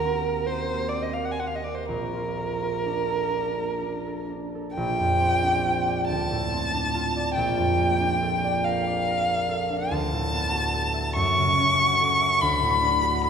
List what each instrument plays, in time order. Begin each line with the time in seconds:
Already playing: harp D#2 F#4 A#4, violin A#4
0.04 harp C4
0.26 harp A#4
0.46 harp C4, violin C5
0.71 harp A#3
0.89 violin D5
0.94 harp C4
1.03 violin D#5
1.13 harp A#4, violin F5
1.25 violin F#5
1.32 violin G#5
1.39 harp C4, violin F#5
1.47 violin F5
1.55 violin D#5
1.64 harp A#4, violin D5
1.74 violin C5
1.86 harp A#1, violin A#4
2.13 harp F4
2.37 harp A4
2.61 harp F4
2.86 harp D4
3.09 harp A4
3.33 harp D4
3.57 harp A#3
3.82 harp D4
4.06 harp A4
4.30 harp D4
4.55 harp A4
4.74 harp A#1, violin G5
4.99 harp F2
5.20 harp C4
5.43 harp D4
5.65 harp F4
5.88 harp D5
6.08 harp D2, violin A5
6.31 harp A2
6.53 harp C4
6.74 harp D4
6.94 harp F4
7.16 harp D5
7.35 harp A#1, violin G5
7.57 harp F2
7.79 harp A#3
8.00 harp D4
8.22 harp A4
8.44 harp D5
8.64 harp A#4, violin F5
8.87 harp D5
9.08 harp A#4
9.29 harp D5
9.49 harp A4
9.70 harp D4
9.91 harp D2, violin A5
10.12 harp A2
10.34 harp B3
10.53 harp F#4
10.73 harp A4
10.94 harp E5
11.15 harp F#2, violin C#6
11.37 harp C#3
11.58 harp C#4
11.79 harp F#4
12.00 harp A4
12.21 harp E5
12.41 harp D2, violin B5
12.62 harp A2
12.82 harp D4
13.02 harp F#4
13.23 harp A4, violin B5